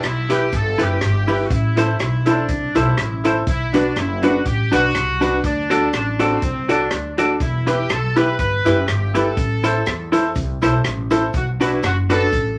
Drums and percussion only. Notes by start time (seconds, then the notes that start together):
0.03 cross-stick, closed hi-hat, cabasa
0.30 closed hi-hat, cabasa
0.52 kick, closed hi-hat, cabasa
0.78 closed hi-hat, cabasa
1.01 cross-stick, closed hi-hat, cabasa
1.28 open hi-hat, cabasa
1.50 kick, closed hi-hat, cabasa
1.77 closed hi-hat, cabasa
1.99 cross-stick, closed hi-hat, cabasa
2.26 closed hi-hat, cabasa
2.48 kick, closed hi-hat, cabasa
2.75 cross-stick, closed hi-hat, cabasa
2.97 cross-stick, closed hi-hat, cabasa
3.24 closed hi-hat, cabasa
3.47 kick, closed hi-hat, cabasa
3.73 closed hi-hat, cabasa
3.96 cross-stick, closed hi-hat, cabasa
4.23 closed hi-hat, cabasa
4.45 kick, closed hi-hat, cabasa
4.72 closed hi-hat, cabasa
4.95 cross-stick, closed hi-hat, cabasa
5.21 closed hi-hat, cabasa
5.44 kick, closed hi-hat, cabasa
5.70 closed hi-hat, cabasa
5.93 cross-stick, closed hi-hat, cabasa
6.20 closed hi-hat, cabasa
6.42 kick, closed hi-hat, cabasa
6.69 closed hi-hat, cabasa
6.91 cross-stick, closed hi-hat, cabasa
7.18 closed hi-hat, cabasa
7.40 kick, closed hi-hat, cabasa
7.67 closed hi-hat, cabasa
7.89 cross-stick, closed hi-hat, cabasa
8.16 closed hi-hat, cabasa
8.39 kick, closed hi-hat, cabasa
8.66 closed hi-hat, cabasa
8.88 cross-stick, closed hi-hat, cabasa
9.15 closed hi-hat, cabasa
9.37 kick, closed hi-hat, cabasa
9.64 closed hi-hat, cabasa
9.86 cross-stick, closed hi-hat, cabasa
10.13 closed hi-hat, cabasa
10.35 kick, closed hi-hat, cabasa
10.62 cross-stick, closed hi-hat, cabasa
10.84 cross-stick, closed hi-hat, cabasa
11.11 closed hi-hat, cabasa
11.33 kick, closed hi-hat, cabasa
11.61 closed hi-hat, cabasa
11.83 cross-stick, closed hi-hat, cabasa
12.10 closed hi-hat, cabasa
12.32 kick, closed hi-hat, cabasa